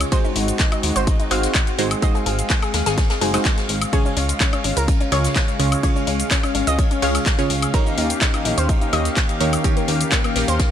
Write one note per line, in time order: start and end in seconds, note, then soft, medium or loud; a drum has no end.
0.00 3.89 G#3 medium
0.00 closed hi-hat medium
0.00 high woodblock medium
0.00 shaker medium
0.12 1.28 G#3 medium
0.12 3.89 C4 medium
0.12 1.28 D#4 medium
0.12 2.00 F#4 medium
0.12 1.28 F#4 medium
0.12 1.28 G#4 medium
0.12 1.28 C5 medium
0.12 0.21 C5 loud
0.12 kick loud
0.12 closed hi-hat medium
0.12 ride medium
0.12 shaker medium
0.24 0.33 D#4 medium
0.24 shaker soft
0.35 0.52 G#1 loud
0.35 0.45 D#4 medium
0.35 open hi-hat loud
0.35 ride medium
0.48 closed hi-hat medium
0.48 shaker medium
0.59 0.69 D#4 medium
0.59 kick loud
0.59 snare loud
0.59 clap loud
0.59 closed hi-hat medium
0.59 shaker medium
0.72 0.80 D#4 medium
0.72 closed hi-hat soft
0.72 high woodblock medium
0.72 shaker soft
0.83 0.92 D#2 medium
0.83 0.92 D#4 medium
0.83 open hi-hat loud
0.83 ride medium
0.96 1.11 G#1 medium
0.96 1.04 C5 medium
0.96 closed hi-hat medium
0.96 shaker medium
1.07 1.16 D#4 medium
1.07 kick loud
1.07 closed hi-hat medium
1.07 ride medium
1.07 shaker medium
1.20 1.28 D#4 medium
1.20 closed hi-hat soft
1.20 shaker soft
1.31 1.47 G#1 medium
1.31 1.76 G#3 medium
1.31 1.76 D#4 medium
1.31 1.76 F#4 medium
1.31 1.76 G#4 medium
1.31 1.76 C5 medium
1.31 1.93 F5 loud
1.31 open hi-hat loud
1.31 ride medium
1.31 high woodblock medium
1.43 snare soft
1.43 closed hi-hat soft
1.43 shaker medium
1.55 kick loud
1.55 snare loud
1.55 clap loud
1.55 closed hi-hat medium
1.55 ride medium
1.55 shaker medium
1.67 closed hi-hat soft
1.67 shaker soft
1.79 1.95 G#1 medium
1.79 2.00 G#3 medium
1.79 2.00 D#4 medium
1.79 2.00 F#4 medium
1.79 2.00 G#4 medium
1.79 2.00 C5 loud
1.79 open hi-hat loud
1.79 ride medium
1.91 closed hi-hat soft
1.91 high woodblock medium
1.91 shaker medium
2.02 3.19 G#3 medium
2.02 3.19 D#4 medium
2.02 3.19 F#4 medium
2.02 3.19 G#4 medium
2.02 3.19 C5 loud
2.02 2.11 D#5 loud
2.02 10.71 F5 medium
2.02 kick loud
2.02 closed hi-hat medium
2.02 ride medium
2.02 shaker medium
2.15 2.23 G#4 medium
2.15 shaker soft
2.26 2.43 G#1 loud
2.26 2.35 G#4 medium
2.26 open hi-hat loud
2.26 ride medium
2.39 closed hi-hat soft
2.39 shaker medium
2.50 2.59 G#4 medium
2.50 kick loud
2.50 snare loud
2.50 clap loud
2.50 closed hi-hat medium
2.50 ride medium
2.50 shaker medium
2.62 2.71 G#4 medium
2.62 closed hi-hat soft
2.62 high woodblock medium
2.62 shaker soft
2.74 2.82 D#2 medium
2.74 2.83 G#4 medium
2.74 snare loud
2.74 open hi-hat loud
2.74 ride medium
2.86 3.02 G#1 medium
2.86 2.95 G#4 loud
2.86 snare medium
2.86 closed hi-hat medium
2.86 ride medium
2.86 shaker medium
2.98 3.07 G#4 medium
2.98 kick loud
2.98 snare loud
2.98 closed hi-hat medium
2.98 ride medium
2.98 shaker medium
3.09 3.18 G#4 medium
3.09 snare loud
3.09 closed hi-hat soft
3.09 ride medium
3.09 shaker soft
3.21 3.38 F#1 medium
3.21 3.31 G#3 medium
3.21 3.31 D#4 medium
3.21 3.31 F#4 medium
3.21 3.31 G#4 medium
3.21 3.84 G#4 loud
3.21 3.31 C5 medium
3.21 open hi-hat loud
3.21 open hi-hat medium
3.34 3.90 G#3 medium
3.34 3.90 D#4 medium
3.34 3.90 F#4 medium
3.34 3.90 G#4 medium
3.34 3.90 C5 medium
3.34 snare soft
3.34 closed hi-hat soft
3.34 high woodblock medium
3.34 shaker medium
3.45 kick loud
3.45 snare loud
3.45 clap loud
3.45 closed hi-hat medium
3.45 ride medium
3.45 shaker medium
3.58 snare soft
3.58 closed hi-hat soft
3.58 shaker soft
3.68 3.85 G#1 medium
3.68 open hi-hat loud
3.68 ride medium
3.82 closed hi-hat soft
3.82 high woodblock medium
3.82 shaker medium
3.92 5.09 C#3 medium
3.92 7.70 G#3 medium
3.92 10.71 C#4 medium
3.92 5.09 C#4 medium
3.92 5.09 F4 medium
3.92 5.09 G#4 medium
3.92 4.02 G#4 loud
3.92 5.09 C#5 medium
3.92 kick loud
3.92 closed hi-hat medium
3.92 ride medium
3.92 shaker medium
4.05 4.14 C#4 medium
4.05 shaker soft
4.17 4.33 C#2 loud
4.17 4.26 C#4 medium
4.17 open hi-hat loud
4.17 ride medium
4.29 closed hi-hat soft
4.29 shaker medium
4.40 4.50 C#4 medium
4.40 kick loud
4.40 snare loud
4.40 clap loud
4.40 closed hi-hat medium
4.40 ride medium
4.40 shaker medium
4.53 4.61 C#4 medium
4.53 closed hi-hat soft
4.53 high woodblock medium
4.53 shaker soft
4.64 4.73 G#1 medium
4.64 4.73 C#4 medium
4.64 open hi-hat loud
4.64 ride medium
4.77 4.92 C#2 medium
4.77 4.85 A#4 medium
4.77 closed hi-hat medium
4.77 shaker medium
4.88 4.97 C#4 medium
4.88 kick loud
4.88 closed hi-hat medium
4.88 ride medium
4.88 shaker medium
5.01 5.09 C#4 medium
5.01 closed hi-hat soft
5.01 shaker soft
5.12 5.28 C#2 medium
5.12 5.57 C#3 medium
5.12 5.57 C#4 medium
5.12 5.57 F4 medium
5.12 5.57 G#4 medium
5.12 5.57 C#5 medium
5.12 5.74 C#5 medium
5.12 open hi-hat loud
5.12 ride medium
5.12 high woodblock medium
5.24 snare soft
5.24 closed hi-hat soft
5.24 shaker medium
5.36 kick loud
5.36 snare loud
5.36 clap loud
5.36 closed hi-hat medium
5.36 ride medium
5.36 shaker medium
5.48 closed hi-hat soft
5.48 shaker soft
5.59 5.76 C#2 medium
5.59 5.81 C#3 medium
5.59 5.81 C#4 medium
5.59 5.81 F4 medium
5.59 5.81 G#4 medium
5.59 5.81 C#5 loud
5.59 open hi-hat loud
5.59 ride medium
5.72 closed hi-hat medium
5.72 high woodblock medium
5.72 shaker medium
5.83 7.00 C#3 medium
5.83 7.00 C#4 medium
5.83 7.00 F4 medium
5.83 7.00 G#4 medium
5.83 7.00 C#5 loud
5.83 5.92 C#5 loud
5.83 kick loud
5.83 closed hi-hat medium
5.83 ride medium
5.83 shaker medium
5.96 6.04 C#4 medium
5.96 shaker soft
6.07 6.24 C#2 loud
6.07 6.16 C#4 medium
6.07 open hi-hat loud
6.07 ride medium
6.20 closed hi-hat medium
6.20 shaker medium
6.31 6.40 C#4 medium
6.31 kick loud
6.31 snare loud
6.31 clap loud
6.31 closed hi-hat medium
6.31 ride medium
6.31 shaker medium
6.43 6.52 C#4 medium
6.43 closed hi-hat soft
6.43 high woodblock medium
6.43 shaker soft
6.55 6.63 G#1 medium
6.55 6.64 C#4 medium
6.55 open hi-hat loud
6.55 ride medium
6.67 6.83 C#2 medium
6.67 6.75 D#5 medium
6.67 closed hi-hat medium
6.67 shaker medium
6.79 6.88 C#4 medium
6.79 kick loud
6.79 closed hi-hat medium
6.79 ride medium
6.79 shaker medium
6.91 6.99 C#4 medium
6.91 closed hi-hat soft
6.91 shaker soft
7.02 7.19 C#2 medium
7.02 7.36 C#3 loud
7.02 7.36 C#4 medium
7.02 7.36 F4 medium
7.02 7.36 G#4 medium
7.02 7.36 C#5 loud
7.02 7.65 F5 medium
7.02 open hi-hat medium
7.02 open hi-hat loud
7.14 snare soft
7.14 closed hi-hat soft
7.14 high woodblock medium
7.14 shaker medium
7.26 kick loud
7.26 snare loud
7.26 clap loud
7.26 closed hi-hat medium
7.26 ride medium
7.26 shaker medium
7.39 7.71 C#3 loud
7.39 7.71 C#4 medium
7.39 7.71 F4 medium
7.39 7.71 G#4 medium
7.39 7.71 C#5 loud
7.39 snare soft
7.39 closed hi-hat soft
7.39 shaker soft
7.50 7.66 C#2 medium
7.50 open hi-hat loud
7.50 ride medium
7.62 closed hi-hat medium
7.62 high woodblock medium
7.62 shaker medium
7.74 8.90 D#3 medium
7.74 10.71 D#3 medium
7.74 10.71 A#3 medium
7.74 8.90 D#4 medium
7.74 8.90 G4 medium
7.74 10.71 G4 medium
7.74 7.83 A#4 loud
7.74 8.90 A#4 medium
7.74 8.90 C#5 medium
7.74 kick loud
7.74 closed hi-hat medium
7.74 ride medium
7.74 shaker medium
7.86 7.95 D#4 medium
7.86 shaker soft
7.98 8.14 D#2 loud
7.98 8.07 D#4 medium
7.98 open hi-hat loud
7.98 ride medium
8.10 closed hi-hat medium
8.10 shaker medium
8.21 8.30 D#4 medium
8.21 kick loud
8.21 snare loud
8.21 clap loud
8.21 closed hi-hat medium
8.21 ride loud
8.21 shaker medium
8.34 8.42 D#4 medium
8.34 closed hi-hat soft
8.34 high woodblock medium
8.34 shaker soft
8.45 8.54 A#1 medium
8.45 8.54 D#4 medium
8.45 open hi-hat loud
8.45 ride medium
8.58 8.73 D#2 medium
8.58 8.66 C5 loud
8.58 closed hi-hat medium
8.58 shaker medium
8.69 8.78 D#4 medium
8.69 kick loud
8.69 closed hi-hat medium
8.69 ride medium
8.69 shaker medium
8.81 8.90 D#4 medium
8.81 closed hi-hat soft
8.81 shaker soft
8.93 9.09 D#2 medium
8.93 9.38 D#3 medium
8.93 9.38 D#4 medium
8.93 9.38 G4 medium
8.93 9.38 A#4 medium
8.93 9.38 C#5 medium
8.93 9.55 D#5 loud
8.93 open hi-hat loud
8.93 ride medium
8.93 high woodblock medium
9.05 snare soft
9.05 closed hi-hat medium
9.05 shaker medium
9.16 kick loud
9.16 snare loud
9.16 clap loud
9.16 closed hi-hat medium
9.16 ride medium
9.16 shaker medium
9.29 closed hi-hat soft
9.29 shaker soft
9.40 9.57 D#2 medium
9.40 9.62 D#3 loud
9.40 9.62 D#4 medium
9.40 9.62 G4 medium
9.40 9.62 A#4 medium
9.40 9.62 C#5 loud
9.40 open hi-hat loud
9.40 ride medium
9.53 closed hi-hat medium
9.53 high woodblock medium
9.53 shaker medium
9.64 10.71 D#3 medium
9.64 10.71 D#4 medium
9.64 9.73 G4 loud
9.64 10.71 G4 medium
9.64 10.71 A#4 medium
9.64 10.71 C#5 loud
9.64 kick loud
9.64 closed hi-hat medium
9.64 ride medium
9.64 shaker medium
9.77 9.85 A#3 medium
9.77 closed hi-hat soft
9.77 shaker soft
9.88 10.04 D#2 loud
9.88 9.97 A#3 medium
9.88 open hi-hat loud
9.88 ride medium
10.01 closed hi-hat medium
10.01 shaker medium
10.11 10.21 A#3 medium
10.11 kick loud
10.11 snare loud
10.11 clap loud
10.11 closed hi-hat medium
10.11 ride medium
10.11 shaker medium
10.24 10.33 A#3 medium
10.24 closed hi-hat soft
10.24 high woodblock medium
10.24 shaker soft
10.36 10.44 A#1 medium
10.36 10.45 A#3 medium
10.36 snare loud
10.36 open hi-hat loud
10.36 ride medium
10.48 10.64 D#2 medium
10.48 10.56 C5 medium
10.48 closed hi-hat medium
10.48 shaker medium
10.60 10.69 A#3 medium
10.60 kick loud
10.60 snare loud
10.60 closed hi-hat medium
10.60 ride medium
10.60 shaker medium